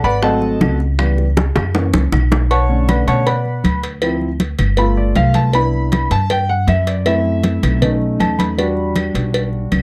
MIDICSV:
0, 0, Header, 1, 4, 480
1, 0, Start_track
1, 0, Key_signature, 2, "minor"
1, 0, Tempo, 379747
1, 1250, Time_signature, 4, 2, 24, 8
1, 12412, End_track
2, 0, Start_track
2, 0, Title_t, "Grand piano"
2, 0, Program_c, 0, 0
2, 53, Note_on_c, 0, 83, 111
2, 55, Note_on_c, 0, 74, 95
2, 56, Note_on_c, 0, 71, 90
2, 58, Note_on_c, 0, 78, 84
2, 276, Note_off_c, 0, 78, 0
2, 278, Note_on_c, 0, 54, 66
2, 285, Note_off_c, 0, 83, 0
2, 286, Note_off_c, 0, 74, 0
2, 287, Note_off_c, 0, 71, 0
2, 289, Note_on_c, 0, 57, 55
2, 291, Note_on_c, 0, 81, 101
2, 295, Note_on_c, 0, 60, 70
2, 295, Note_on_c, 0, 75, 82
2, 295, Note_on_c, 0, 78, 67
2, 297, Note_on_c, 0, 69, 75
2, 960, Note_off_c, 0, 81, 0
2, 962, Note_off_c, 0, 75, 0
2, 962, Note_off_c, 0, 78, 0
2, 963, Note_off_c, 0, 69, 0
2, 967, Note_off_c, 0, 54, 0
2, 973, Note_off_c, 0, 57, 0
2, 976, Note_off_c, 0, 60, 0
2, 1245, Note_on_c, 0, 52, 56
2, 1251, Note_on_c, 0, 55, 54
2, 1258, Note_on_c, 0, 59, 68
2, 1566, Note_off_c, 0, 52, 0
2, 1569, Note_off_c, 0, 55, 0
2, 1573, Note_off_c, 0, 59, 0
2, 2201, Note_on_c, 0, 52, 57
2, 2213, Note_on_c, 0, 58, 56
2, 2220, Note_on_c, 0, 61, 68
2, 2524, Note_off_c, 0, 52, 0
2, 2530, Note_off_c, 0, 58, 0
2, 2534, Note_off_c, 0, 61, 0
2, 3169, Note_on_c, 0, 85, 98
2, 3176, Note_on_c, 0, 73, 84
2, 3176, Note_on_c, 0, 81, 80
2, 3178, Note_on_c, 0, 78, 73
2, 3395, Note_on_c, 0, 50, 59
2, 3404, Note_on_c, 0, 57, 47
2, 3411, Note_on_c, 0, 61, 66
2, 3615, Note_off_c, 0, 85, 0
2, 3618, Note_off_c, 0, 73, 0
2, 3618, Note_off_c, 0, 81, 0
2, 3619, Note_off_c, 0, 78, 0
2, 3649, Note_on_c, 0, 83, 77
2, 3650, Note_on_c, 0, 74, 59
2, 3653, Note_on_c, 0, 71, 58
2, 3654, Note_on_c, 0, 78, 62
2, 3874, Note_off_c, 0, 78, 0
2, 3881, Note_off_c, 0, 83, 0
2, 3882, Note_off_c, 0, 74, 0
2, 3883, Note_off_c, 0, 71, 0
2, 3887, Note_on_c, 0, 85, 97
2, 3891, Note_on_c, 0, 81, 84
2, 3893, Note_on_c, 0, 73, 92
2, 3893, Note_on_c, 0, 78, 75
2, 4084, Note_off_c, 0, 50, 0
2, 4089, Note_off_c, 0, 57, 0
2, 4093, Note_off_c, 0, 61, 0
2, 4116, Note_off_c, 0, 78, 0
2, 4120, Note_off_c, 0, 85, 0
2, 4122, Note_off_c, 0, 81, 0
2, 4123, Note_off_c, 0, 73, 0
2, 4128, Note_on_c, 0, 83, 87
2, 4134, Note_on_c, 0, 74, 67
2, 4135, Note_on_c, 0, 71, 68
2, 4135, Note_on_c, 0, 78, 66
2, 4797, Note_off_c, 0, 83, 0
2, 4800, Note_off_c, 0, 74, 0
2, 4800, Note_off_c, 0, 78, 0
2, 4801, Note_off_c, 0, 71, 0
2, 5077, Note_on_c, 0, 53, 61
2, 5086, Note_on_c, 0, 60, 55
2, 5091, Note_on_c, 0, 64, 66
2, 5401, Note_off_c, 0, 53, 0
2, 5405, Note_off_c, 0, 60, 0
2, 5408, Note_off_c, 0, 64, 0
2, 6036, Note_on_c, 0, 57, 61
2, 6044, Note_on_c, 0, 59, 52
2, 6047, Note_on_c, 0, 83, 96
2, 6050, Note_on_c, 0, 65, 71
2, 6280, Note_off_c, 0, 83, 0
2, 6287, Note_on_c, 0, 74, 73
2, 6520, Note_off_c, 0, 74, 0
2, 6525, Note_on_c, 0, 77, 104
2, 6759, Note_off_c, 0, 77, 0
2, 6762, Note_on_c, 0, 81, 93
2, 6953, Note_off_c, 0, 57, 0
2, 6957, Note_off_c, 0, 59, 0
2, 6960, Note_off_c, 0, 65, 0
2, 6997, Note_off_c, 0, 81, 0
2, 7000, Note_on_c, 0, 59, 61
2, 7008, Note_on_c, 0, 62, 50
2, 7013, Note_on_c, 0, 83, 103
2, 7018, Note_on_c, 0, 64, 63
2, 7680, Note_off_c, 0, 83, 0
2, 7687, Note_off_c, 0, 59, 0
2, 7691, Note_off_c, 0, 62, 0
2, 7696, Note_off_c, 0, 64, 0
2, 7729, Note_on_c, 0, 81, 109
2, 7961, Note_off_c, 0, 81, 0
2, 7976, Note_on_c, 0, 79, 109
2, 8204, Note_off_c, 0, 79, 0
2, 8208, Note_on_c, 0, 78, 101
2, 8440, Note_off_c, 0, 78, 0
2, 8451, Note_on_c, 0, 76, 92
2, 8682, Note_off_c, 0, 76, 0
2, 8686, Note_on_c, 0, 74, 68
2, 8917, Note_on_c, 0, 57, 54
2, 8919, Note_off_c, 0, 74, 0
2, 8926, Note_on_c, 0, 60, 54
2, 8928, Note_on_c, 0, 76, 96
2, 8934, Note_on_c, 0, 64, 66
2, 9834, Note_off_c, 0, 57, 0
2, 9837, Note_off_c, 0, 76, 0
2, 9839, Note_off_c, 0, 60, 0
2, 9843, Note_off_c, 0, 64, 0
2, 9878, Note_on_c, 0, 57, 61
2, 9884, Note_on_c, 0, 61, 58
2, 9893, Note_on_c, 0, 63, 67
2, 10366, Note_on_c, 0, 81, 89
2, 10600, Note_off_c, 0, 81, 0
2, 10601, Note_on_c, 0, 83, 78
2, 10795, Note_off_c, 0, 57, 0
2, 10798, Note_off_c, 0, 61, 0
2, 10802, Note_off_c, 0, 63, 0
2, 10841, Note_on_c, 0, 55, 62
2, 10849, Note_on_c, 0, 62, 54
2, 10856, Note_on_c, 0, 66, 68
2, 11274, Note_off_c, 0, 83, 0
2, 12412, Note_off_c, 0, 55, 0
2, 12412, Note_off_c, 0, 62, 0
2, 12412, Note_off_c, 0, 66, 0
2, 12412, End_track
3, 0, Start_track
3, 0, Title_t, "Upright bass"
3, 0, Program_c, 1, 32
3, 47, Note_on_c, 1, 32, 84
3, 717, Note_off_c, 1, 32, 0
3, 766, Note_on_c, 1, 37, 97
3, 1892, Note_off_c, 1, 37, 0
3, 1969, Note_on_c, 1, 42, 91
3, 2415, Note_off_c, 1, 42, 0
3, 2447, Note_on_c, 1, 37, 75
3, 2671, Note_off_c, 1, 37, 0
3, 2683, Note_on_c, 1, 35, 100
3, 3810, Note_off_c, 1, 35, 0
3, 3885, Note_on_c, 1, 47, 91
3, 4555, Note_off_c, 1, 47, 0
3, 4600, Note_on_c, 1, 38, 86
3, 5729, Note_off_c, 1, 38, 0
3, 5802, Note_on_c, 1, 31, 80
3, 6474, Note_off_c, 1, 31, 0
3, 6516, Note_on_c, 1, 36, 93
3, 7647, Note_off_c, 1, 36, 0
3, 7719, Note_on_c, 1, 43, 91
3, 8392, Note_off_c, 1, 43, 0
3, 8436, Note_on_c, 1, 42, 101
3, 9567, Note_off_c, 1, 42, 0
3, 9642, Note_on_c, 1, 35, 99
3, 10314, Note_off_c, 1, 35, 0
3, 10359, Note_on_c, 1, 40, 84
3, 11489, Note_off_c, 1, 40, 0
3, 11559, Note_on_c, 1, 35, 82
3, 12233, Note_off_c, 1, 35, 0
3, 12286, Note_on_c, 1, 37, 88
3, 12412, Note_off_c, 1, 37, 0
3, 12412, End_track
4, 0, Start_track
4, 0, Title_t, "Drums"
4, 54, Note_on_c, 9, 63, 36
4, 181, Note_off_c, 9, 63, 0
4, 285, Note_on_c, 9, 60, 65
4, 296, Note_on_c, 9, 63, 38
4, 411, Note_off_c, 9, 60, 0
4, 422, Note_off_c, 9, 63, 0
4, 526, Note_on_c, 9, 60, 34
4, 534, Note_on_c, 9, 63, 35
4, 652, Note_off_c, 9, 60, 0
4, 661, Note_off_c, 9, 63, 0
4, 772, Note_on_c, 9, 60, 35
4, 772, Note_on_c, 9, 61, 80
4, 775, Note_on_c, 9, 63, 85
4, 779, Note_on_c, 9, 75, 70
4, 898, Note_off_c, 9, 60, 0
4, 898, Note_off_c, 9, 61, 0
4, 901, Note_off_c, 9, 63, 0
4, 905, Note_off_c, 9, 75, 0
4, 1012, Note_on_c, 9, 60, 40
4, 1138, Note_off_c, 9, 60, 0
4, 1250, Note_on_c, 9, 60, 69
4, 1255, Note_on_c, 9, 75, 76
4, 1256, Note_on_c, 9, 63, 36
4, 1376, Note_off_c, 9, 60, 0
4, 1381, Note_off_c, 9, 75, 0
4, 1383, Note_off_c, 9, 63, 0
4, 1492, Note_on_c, 9, 60, 39
4, 1495, Note_on_c, 9, 63, 36
4, 1619, Note_off_c, 9, 60, 0
4, 1621, Note_off_c, 9, 63, 0
4, 1732, Note_on_c, 9, 60, 114
4, 1736, Note_on_c, 9, 63, 107
4, 1858, Note_off_c, 9, 60, 0
4, 1862, Note_off_c, 9, 63, 0
4, 1966, Note_on_c, 9, 60, 124
4, 1970, Note_on_c, 9, 75, 67
4, 1979, Note_on_c, 9, 63, 37
4, 1979, Note_on_c, 9, 64, 89
4, 2093, Note_off_c, 9, 60, 0
4, 2096, Note_off_c, 9, 75, 0
4, 2105, Note_off_c, 9, 63, 0
4, 2105, Note_off_c, 9, 64, 0
4, 2208, Note_on_c, 9, 61, 103
4, 2215, Note_on_c, 9, 63, 36
4, 2334, Note_off_c, 9, 61, 0
4, 2342, Note_off_c, 9, 63, 0
4, 2446, Note_on_c, 9, 61, 85
4, 2456, Note_on_c, 9, 63, 77
4, 2573, Note_off_c, 9, 61, 0
4, 2582, Note_off_c, 9, 63, 0
4, 2685, Note_on_c, 9, 61, 76
4, 2693, Note_on_c, 9, 75, 69
4, 2698, Note_on_c, 9, 64, 96
4, 2811, Note_off_c, 9, 61, 0
4, 2819, Note_off_c, 9, 75, 0
4, 2824, Note_off_c, 9, 64, 0
4, 2929, Note_on_c, 9, 61, 112
4, 2937, Note_on_c, 9, 64, 83
4, 3055, Note_off_c, 9, 61, 0
4, 3063, Note_off_c, 9, 64, 0
4, 3172, Note_on_c, 9, 56, 87
4, 3177, Note_on_c, 9, 63, 34
4, 3298, Note_off_c, 9, 56, 0
4, 3303, Note_off_c, 9, 63, 0
4, 3416, Note_on_c, 9, 63, 37
4, 3542, Note_off_c, 9, 63, 0
4, 3648, Note_on_c, 9, 63, 104
4, 3650, Note_on_c, 9, 75, 69
4, 3651, Note_on_c, 9, 56, 63
4, 3775, Note_off_c, 9, 63, 0
4, 3776, Note_off_c, 9, 75, 0
4, 3778, Note_off_c, 9, 56, 0
4, 3890, Note_on_c, 9, 56, 72
4, 3893, Note_on_c, 9, 63, 37
4, 4016, Note_off_c, 9, 56, 0
4, 4020, Note_off_c, 9, 63, 0
4, 4129, Note_on_c, 9, 56, 98
4, 4132, Note_on_c, 9, 63, 32
4, 4255, Note_off_c, 9, 56, 0
4, 4259, Note_off_c, 9, 63, 0
4, 4367, Note_on_c, 9, 63, 34
4, 4493, Note_off_c, 9, 63, 0
4, 4607, Note_on_c, 9, 63, 88
4, 4608, Note_on_c, 9, 75, 64
4, 4609, Note_on_c, 9, 56, 73
4, 4734, Note_off_c, 9, 63, 0
4, 4735, Note_off_c, 9, 75, 0
4, 4736, Note_off_c, 9, 56, 0
4, 4847, Note_on_c, 9, 56, 76
4, 4974, Note_off_c, 9, 56, 0
4, 5078, Note_on_c, 9, 56, 95
4, 5086, Note_on_c, 9, 63, 36
4, 5086, Note_on_c, 9, 75, 77
4, 5204, Note_off_c, 9, 56, 0
4, 5212, Note_off_c, 9, 63, 0
4, 5212, Note_off_c, 9, 75, 0
4, 5325, Note_on_c, 9, 63, 32
4, 5452, Note_off_c, 9, 63, 0
4, 5560, Note_on_c, 9, 63, 96
4, 5561, Note_on_c, 9, 56, 68
4, 5686, Note_off_c, 9, 63, 0
4, 5688, Note_off_c, 9, 56, 0
4, 5796, Note_on_c, 9, 56, 77
4, 5801, Note_on_c, 9, 63, 35
4, 5801, Note_on_c, 9, 64, 77
4, 5806, Note_on_c, 9, 75, 70
4, 5923, Note_off_c, 9, 56, 0
4, 5927, Note_off_c, 9, 63, 0
4, 5927, Note_off_c, 9, 64, 0
4, 5932, Note_off_c, 9, 75, 0
4, 6031, Note_on_c, 9, 56, 92
4, 6042, Note_on_c, 9, 63, 37
4, 6157, Note_off_c, 9, 56, 0
4, 6169, Note_off_c, 9, 63, 0
4, 6280, Note_on_c, 9, 63, 36
4, 6407, Note_off_c, 9, 63, 0
4, 6516, Note_on_c, 9, 56, 61
4, 6519, Note_on_c, 9, 63, 85
4, 6524, Note_on_c, 9, 75, 69
4, 6642, Note_off_c, 9, 56, 0
4, 6646, Note_off_c, 9, 63, 0
4, 6651, Note_off_c, 9, 75, 0
4, 6752, Note_on_c, 9, 56, 73
4, 6764, Note_on_c, 9, 63, 69
4, 6878, Note_off_c, 9, 56, 0
4, 6891, Note_off_c, 9, 63, 0
4, 6995, Note_on_c, 9, 56, 92
4, 7007, Note_on_c, 9, 63, 36
4, 7122, Note_off_c, 9, 56, 0
4, 7133, Note_off_c, 9, 63, 0
4, 7247, Note_on_c, 9, 63, 33
4, 7373, Note_off_c, 9, 63, 0
4, 7482, Note_on_c, 9, 56, 68
4, 7486, Note_on_c, 9, 75, 62
4, 7491, Note_on_c, 9, 63, 101
4, 7609, Note_off_c, 9, 56, 0
4, 7613, Note_off_c, 9, 75, 0
4, 7618, Note_off_c, 9, 63, 0
4, 7723, Note_on_c, 9, 56, 80
4, 7732, Note_on_c, 9, 63, 36
4, 7849, Note_off_c, 9, 56, 0
4, 7858, Note_off_c, 9, 63, 0
4, 7963, Note_on_c, 9, 56, 101
4, 7971, Note_on_c, 9, 63, 36
4, 8090, Note_off_c, 9, 56, 0
4, 8097, Note_off_c, 9, 63, 0
4, 8211, Note_on_c, 9, 63, 33
4, 8337, Note_off_c, 9, 63, 0
4, 8440, Note_on_c, 9, 56, 64
4, 8445, Note_on_c, 9, 63, 85
4, 8449, Note_on_c, 9, 75, 70
4, 8567, Note_off_c, 9, 56, 0
4, 8572, Note_off_c, 9, 63, 0
4, 8575, Note_off_c, 9, 75, 0
4, 8685, Note_on_c, 9, 56, 75
4, 8812, Note_off_c, 9, 56, 0
4, 8922, Note_on_c, 9, 56, 98
4, 8926, Note_on_c, 9, 63, 35
4, 8926, Note_on_c, 9, 75, 69
4, 9048, Note_off_c, 9, 56, 0
4, 9052, Note_off_c, 9, 63, 0
4, 9053, Note_off_c, 9, 75, 0
4, 9166, Note_on_c, 9, 63, 35
4, 9292, Note_off_c, 9, 63, 0
4, 9398, Note_on_c, 9, 56, 71
4, 9403, Note_on_c, 9, 63, 99
4, 9524, Note_off_c, 9, 56, 0
4, 9530, Note_off_c, 9, 63, 0
4, 9646, Note_on_c, 9, 63, 34
4, 9646, Note_on_c, 9, 64, 86
4, 9648, Note_on_c, 9, 56, 85
4, 9651, Note_on_c, 9, 75, 63
4, 9772, Note_off_c, 9, 63, 0
4, 9772, Note_off_c, 9, 64, 0
4, 9775, Note_off_c, 9, 56, 0
4, 9778, Note_off_c, 9, 75, 0
4, 9885, Note_on_c, 9, 56, 112
4, 9888, Note_on_c, 9, 63, 38
4, 9888, Note_on_c, 9, 64, 80
4, 10011, Note_off_c, 9, 56, 0
4, 10015, Note_off_c, 9, 63, 0
4, 10015, Note_off_c, 9, 64, 0
4, 10129, Note_on_c, 9, 63, 33
4, 10255, Note_off_c, 9, 63, 0
4, 10368, Note_on_c, 9, 75, 72
4, 10369, Note_on_c, 9, 63, 86
4, 10371, Note_on_c, 9, 56, 68
4, 10495, Note_off_c, 9, 63, 0
4, 10495, Note_off_c, 9, 75, 0
4, 10497, Note_off_c, 9, 56, 0
4, 10603, Note_on_c, 9, 63, 77
4, 10614, Note_on_c, 9, 56, 84
4, 10729, Note_off_c, 9, 63, 0
4, 10740, Note_off_c, 9, 56, 0
4, 10850, Note_on_c, 9, 63, 32
4, 10852, Note_on_c, 9, 56, 94
4, 10976, Note_off_c, 9, 63, 0
4, 10978, Note_off_c, 9, 56, 0
4, 11083, Note_on_c, 9, 63, 34
4, 11209, Note_off_c, 9, 63, 0
4, 11320, Note_on_c, 9, 63, 93
4, 11326, Note_on_c, 9, 56, 70
4, 11327, Note_on_c, 9, 75, 74
4, 11447, Note_off_c, 9, 63, 0
4, 11452, Note_off_c, 9, 56, 0
4, 11453, Note_off_c, 9, 75, 0
4, 11563, Note_on_c, 9, 63, 38
4, 11568, Note_on_c, 9, 56, 74
4, 11690, Note_off_c, 9, 63, 0
4, 11695, Note_off_c, 9, 56, 0
4, 11803, Note_on_c, 9, 63, 33
4, 11809, Note_on_c, 9, 56, 103
4, 11930, Note_off_c, 9, 63, 0
4, 11935, Note_off_c, 9, 56, 0
4, 12045, Note_on_c, 9, 63, 35
4, 12171, Note_off_c, 9, 63, 0
4, 12283, Note_on_c, 9, 56, 63
4, 12285, Note_on_c, 9, 63, 76
4, 12286, Note_on_c, 9, 75, 75
4, 12409, Note_off_c, 9, 56, 0
4, 12411, Note_off_c, 9, 63, 0
4, 12412, Note_off_c, 9, 75, 0
4, 12412, End_track
0, 0, End_of_file